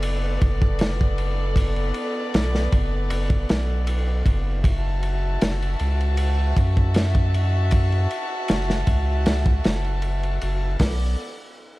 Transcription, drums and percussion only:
0.03 ride
0.42 kick, ride
0.62 kick
0.79 snare, ride
1.01 kick
1.18 ride
1.56 kick, ride
1.76 ride
1.94 ride
2.34 snare, ride
2.55 snare
2.72 kick, ride
3.10 ride
3.30 kick
3.49 snare, ride
3.87 ride
4.26 kick, ride
4.64 kick, ride
5.03 ride
5.41 snare, ride
5.62 ride
5.79 ride
6.00 ride
6.17 ride
6.57 kick, ride
6.77 kick
6.94 snare, ride
7.15 kick
7.34 ride
7.71 kick, ride
7.92 ride
8.11 ride
8.48 snare, ride
8.70 snare
8.87 kick, ride
9.26 snare, ride
9.46 kick
9.64 snare, ride
9.84 ride
10.02 ride
10.23 ride
10.41 ride
10.79 kick, snare, open hi-hat

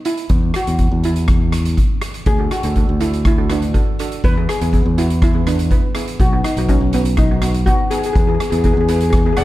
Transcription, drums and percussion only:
0.05 closed hi-hat
0.17 closed hi-hat
0.29 kick, closed hi-hat
0.54 cross-stick, closed hi-hat
0.67 closed hi-hat
0.79 kick, closed hi-hat
1.03 closed hi-hat
1.16 closed hi-hat
1.28 kick, cross-stick, closed hi-hat
1.52 cross-stick, closed hi-hat
1.65 closed hi-hat
1.77 kick, closed hi-hat
2.02 cross-stick, closed hi-hat
2.14 closed hi-hat
2.26 kick, closed hi-hat
2.51 cross-stick, closed hi-hat
2.63 closed hi-hat
2.76 kick, closed hi-hat
3.00 closed hi-hat
3.13 closed hi-hat
3.25 kick, cross-stick, closed hi-hat
3.50 cross-stick, closed hi-hat
3.62 closed hi-hat
3.74 kick, closed hi-hat
3.99 closed hi-hat
4.12 closed hi-hat
4.24 kick, closed hi-hat
4.49 cross-stick, closed hi-hat
4.61 closed hi-hat
4.73 kick, closed hi-hat
4.98 closed hi-hat
5.10 closed hi-hat
5.22 kick, cross-stick, closed hi-hat
5.47 cross-stick, closed hi-hat
5.59 closed hi-hat
5.71 kick, closed hi-hat
5.95 cross-stick, closed hi-hat
6.08 closed hi-hat
6.20 kick, closed hi-hat
6.44 cross-stick, closed hi-hat
6.57 closed hi-hat
6.69 kick, closed hi-hat
6.93 closed hi-hat
7.05 closed hi-hat
7.17 kick, cross-stick, closed hi-hat
7.42 cross-stick, closed hi-hat
7.54 closed hi-hat
7.66 kick, closed hi-hat
7.91 closed hi-hat
8.03 closed hi-hat
8.15 kick, closed hi-hat
8.40 cross-stick, closed hi-hat
8.52 closed hi-hat
8.64 kick, closed hi-hat
8.88 closed hi-hat
9.00 closed hi-hat
9.13 kick, cross-stick, closed hi-hat
9.37 cross-stick, closed hi-hat

